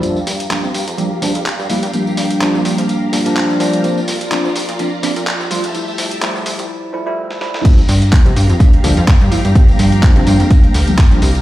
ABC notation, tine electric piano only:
X:1
M:4/4
L:1/16
Q:"Swing 16ths" 1/4=126
K:Gdor
V:1 name="Tine electric piano"
[F,G,B,D] z3 [F,G,B,D] z3 [F,G,B,D] z [F,G,B,D] z3 [F,G,B,E] z | [F,G,B,D]4 [F,G,B,D]6 [F,G,B,D] [F,G,B,D]3 [F,G,B,D]2 | [F,B,CD] z3 [F,B,CD] z3 [F,B,CD] z [F,B,CD] z3 [F,G,A,F] z | [F,G,A,E]4 [F,G,A,E]6 [F,G,A,E] [F,G,A,E]3 [F,G,A,E]2 |
[F,G,B,D] z3 [F,G,B,D] z3 [F,G,B,D] z [F,G,B,D] z3 [F,G,B,E] z | [F,G,B,D]4 [F,G,B,D]6 z [F,G,B,D] z [F,G,B,D] z2 |]